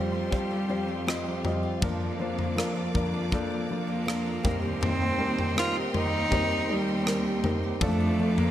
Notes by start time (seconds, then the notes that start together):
Already playing: F2 C3 F3 G3 C4 F4 G4 C5 F5 C6
0.13 F4
0.31 F3 G3 C4 F4 G4 C5, kick
0.51 C4
0.68 F2 G3 C4 F4 C5
0.88 C4
1.07 G3 C4 F4 G4 D#5, cross-stick
1.26 F4
1.44 G3 C4 F4 D#5, floor tom
1.63 F4
1.80 F2 F3 A#3 D4 A#4 D5 D6, kick, floor tom
2.00 A#3
2.19 F3 A#3 D4 C5
2.38 A#3, floor tom
2.56 F3 A#3 D4 A#4, cross-stick
2.75 D4
2.94 F2 F3 A#3 D4 A#4, kick, floor tom
3.12 D4
3.31 F3 A#3 D4 A4 A#4, kick
3.50 A#3
3.69 F2 F3 A#3 D4 F4
3.87 A#3
4.06 F3 A#3 D4 A#4, cross-stick
4.25 D4
4.43 D#2 A#2 D#3 G3 C4 D#4 A#4 D#5 G5 C6, kick, floor tom
4.62 G4
4.81 D#3 C4 A#4, floor tom
5.00 C4
5.18 G3 C4 D#4 G4 A#4
5.38 C4, floor tom
5.55 G3 C4 D#4 F4 A#4, cross-stick
5.76 G4
5.93 D#2 G3 C4 D#4 A#4, floor tom
6.13 G4
6.31 D#3 G3 C4 D#4 A#4 C5, kick, floor tom
6.51 C4
6.69 D#2 G3 C4 D#4 G4 C5
6.88 C4
7.06 G3 C4 D#4 A#4, cross-stick
7.25 G4
7.44 G3 C4 D#4 A#4, floor tom
7.63 G4
7.80 F2 F3 A3 D4 A4 D5 F5 D6, kick, floor tom
8.00 D4
8.19 F3 A3 D4 F4 A4
8.38 A#3 D4, floor tom